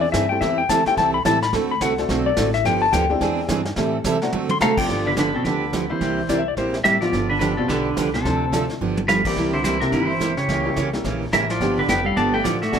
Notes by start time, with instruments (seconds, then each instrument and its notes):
Already playing: upright bass E2
0.01 electric slide guitar D5
0.12 upright bass G2, steel-string acoustic guitar E3 C4 D4 G#4, electric slide guitar E5, kick, snare, hi-hat pedal
0.29 honky-tonk piano A3 C4 E4 G4 A4, electric slide guitar G5
0.41 upright bass E2, steel-string acoustic guitar E3 G3 C4 E4 A4, electric slide guitar E5, brush sweep, kick, snare
0.58 electric slide guitar G5
0.69 upright bass D2, steel-string acoustic guitar E3 G3 C4 E4 A4, electric slide guitar A5, kick, snare, hi-hat pedal
0.86 honky-tonk piano A3 C4 E4 G4 A4, electric slide guitar G5, muted upright bass stroke, snare
0.97 upright bass C2, steel-string acoustic guitar E3 G3 C4 E4 A4, electric slide guitar A5, brush sweep, kick, snare
1.14 electric slide guitar B5
1.25 upright bass A1, steel-string acoustic guitar E3 G3 C4 E4 A4, electric slide guitar A5, kick, snare, hi-hat pedal
1.42 electric slide guitar B5, snare
1.53 upright bass D2, steel-string acoustic guitar D3 A3 C4 F#4 A4, brush sweep, kick, snare
1.71 electric slide guitar B5
1.81 upright bass C2, steel-string acoustic guitar D3 A3 C4 F#4 A4, electric slide guitar F#5, kick, snare, hi-hat pedal
1.98 honky-tonk piano A3 C4 D4 F#4 A4, snare
2.09 upright bass B1, steel-string acoustic guitar D3 A3 C4 F#4 A4, brush sweep, kick, snare
2.26 electric slide guitar D5
2.37 upright bass A1, steel-string acoustic guitar D3 A3 C4 F#4 A4, kick, snare, hi-hat pedal
2.54 electric slide guitar E5, snare
2.65 upright bass G1, steel-string acoustic guitar D3 F3 B3 D4 G4, electric slide guitar G5, brush sweep, kick, snare
2.82 electric slide guitar A5
2.93 upright bass D2, steel-string acoustic guitar D3 F3 B3 D4 G4, electric slide guitar G5, kick, snare, hi-hat pedal
3.09 honky-tonk piano G#3 C4 D4 E4 G4
3.21 upright bass E2, steel-string acoustic guitar E3 C4 D4 G#4, brush sweep, kick, snare
3.49 upright bass G2, steel-string acoustic guitar E3 C4 D4 G#4, kick, snare, hi-hat pedal
3.65 snare
3.76 upright bass A2, steel-string acoustic guitar E3 G3 C4 E4 A4, honky-tonk piano G3 A3 C4 E4 G4, brush sweep, kick, snare
4.04 upright bass C3, steel-string acoustic guitar E3 G3 C4 E4 A4, kick, snare, hi-hat pedal
4.22 honky-tonk piano F#3 A3 C4 D4 F#4, snare
4.33 upright bass D3, steel-string acoustic guitar D3 A3 C4 F#4 A4, high tom
4.49 electric slide guitar C6, high tom
4.61 upright bass C3, steel-string acoustic guitar D3 A3 C4 F#4 A4, hollow-body jazz guitar A3, pedal steel guitar A4 F5, electric slide guitar A#5, snare, hi-hat pedal
4.78 hollow-body jazz guitar F3, pedal steel guitar F4 D5, electric slide guitar G5, kick, crash
4.89 upright bass G1, steel-string acoustic guitar D3 F3 B3 D4 G4, brush sweep, kick, snare
5.05 hollow-body jazz guitar D3, honky-tonk piano F3 G3 B3 D4 F4, pedal steel guitar D4 B4
5.17 steel-string acoustic guitar D3 F3 B3 D4 G4, hollow-body jazz guitar D3, pedal steel guitar D4 B4, kick, snare, hi-hat pedal
5.35 hollow-body jazz guitar B2, pedal steel guitar C4 A4
5.44 upright bass D2, steel-string acoustic guitar D3 F3 B3 D4 G4, hollow-body jazz guitar D3, pedal steel guitar D4 B4, brush sweep, kick, snare
5.73 steel-string acoustic guitar D3 F3 B3 D4 G4, kick, snare, hi-hat pedal
5.89 honky-tonk piano E3 G3 A#3 C4 E4, hollow-body jazz guitar E3, pedal steel guitar E4 C5
6.01 upright bass C2, steel-string acoustic guitar C3 G3 A#3 E4 G4, brush sweep, kick, snare
6.29 upright bass C2, steel-string acoustic guitar C3 G3 A#3 E4 G4, electric slide guitar D5, kick, snare, hi-hat pedal
6.39 electric slide guitar E5
6.48 electric slide guitar D5
6.57 upright bass A#1, steel-string acoustic guitar C3 G3 A#3 E4 G4, electric slide guitar C5, brush sweep, kick, snare
6.74 snare
6.84 upright bass A1, steel-string acoustic guitar C3 G3 A#3 E4 G4, hollow-body jazz guitar G3, pedal steel guitar G4 E5, kick, snare, hi-hat pedal
7.01 honky-tonk piano F3 G3 B3 D4 F4, hollow-body jazz guitar F3, pedal steel guitar F4 D5, snare
7.13 upright bass G1, steel-string acoustic guitar D3 F3 B3 D4 G4, brush sweep, kick, snare
7.30 hollow-body jazz guitar D3, pedal steel guitar D4 B4
7.39 steel-string acoustic guitar D3 F3 B3 D4 G4, hollow-body jazz guitar D3, pedal steel guitar D4 B4, kick, snare, hi-hat pedal
7.57 hollow-body jazz guitar B2, honky-tonk piano F3 G3 B3 D4 F4, pedal steel guitar C4 A4
7.68 upright bass B1, steel-string acoustic guitar D3 F3 B3 D4 G4, hollow-body jazz guitar D3, pedal steel guitar D4 B4, brush sweep, kick, snare
7.97 upright bass C2, steel-string acoustic guitar D3 F3 B3 D4 G4, kick, snare, hi-hat pedal
8.14 hollow-body jazz guitar C3, pedal steel guitar C4 A4, snare
8.25 upright bass D2, steel-string acoustic guitar D3 F3 C4 D4 A4, brush sweep, kick, snare
8.52 steel-string acoustic guitar D3 F3 C4 D4 A4, honky-tonk piano F3 A3 C4 D4 F4, kick, snare, hi-hat pedal
8.70 snare
8.81 upright bass G1, steel-string acoustic guitar D3 F3 B3 D4 G4
8.97 high tom
9.08 steel-string acoustic guitar D3 F3 B3 D4 G4, hollow-body jazz guitar G3, pedal steel guitar B4 F5, snare, hi-hat pedal
9.25 hollow-body jazz guitar E3, honky-tonk piano G3 A#3 C4 E4 A#4, pedal steel guitar G4 D5, kick, crash
9.36 upright bass C2, steel-string acoustic guitar C3 G3 A#3 E4 G4, brush sweep, kick, snare
9.53 hollow-body jazz guitar D3, pedal steel guitar E4 C5
9.64 steel-string acoustic guitar C3 G3 A#3 E4 G4, hollow-body jazz guitar E3, pedal steel guitar E4 C5, kick, snare, hi-hat pedal
9.80 hollow-body jazz guitar C3, honky-tonk piano G3 A#3 C4 E4 G4, pedal steel guitar D4 A#4, snare
9.92 upright bass G1, steel-string acoustic guitar C3 G3 A#3 E4 G4, hollow-body jazz guitar E3, pedal steel guitar E4 B4, brush sweep, kick, snare
10.09 pedal steel guitar C5
10.20 steel-string acoustic guitar C3 G3 A#3 E4 G4, kick, snare, hi-hat pedal
10.37 hollow-body jazz guitar C#3, pedal steel guitar G4 C#5, snare
10.48 upright bass C#2, steel-string acoustic guitar C#3 E3 A#3 C#4 G4, brush sweep, kick, snare
10.65 honky-tonk piano G3 A#3 C#4 E4 G4
10.76 upright bass C2, steel-string acoustic guitar C#3 E3 A#3 C#4 G4, kick, snare, hi-hat pedal
10.93 honky-tonk piano G3 A#3 C#4 E4 G4, snare
11.04 upright bass A#1, steel-string acoustic guitar C#3 E3 A#3 C#4 G4, brush sweep, kick, snare
11.33 upright bass A1, steel-string acoustic guitar C#3 E3 A#3 C#4 G4, hollow-body jazz guitar E3, pedal steel guitar A#4 E5, kick, snare, hi-hat pedal
11.50 hollow-body jazz guitar F3, pedal steel guitar F4 D5, snare
11.60 upright bass G1, steel-string acoustic guitar D3 F3 B3 D4 G4, honky-tonk piano G3 B3 D4 F4 G4, brush sweep, kick, snare
11.78 hollow-body jazz guitar D3, pedal steel guitar D4 B4
11.88 upright bass F1, steel-string acoustic guitar D3 F3 B3 D4 G4, hollow-body jazz guitar B3, pedal steel guitar B4 G5, kick, snare, hi-hat pedal
12.04 hollow-body jazz guitar G3, pedal steel guitar A4 F5
12.16 upright bass G1, steel-string acoustic guitar D3 F3 B3 D4 G4, hollow-body jazz guitar B3, pedal steel guitar D5 A5, brush sweep, kick, snare
12.34 hollow-body jazz guitar A3, pedal steel guitar B4 G5
12.44 upright bass A1, steel-string acoustic guitar D3 F3 B3 D4 G4, hollow-body jazz guitar F3, pedal steel guitar F4 D5, kick, snare, hi-hat pedal
12.62 hollow-body jazz guitar A3, pedal steel guitar F#4 E5, snare
12.72 upright bass B1, steel-string acoustic guitar B2 F#3 A3 D4 F#4, honky-tonk piano A3 B3 D4 F#4 A4, brush sweep, kick, snare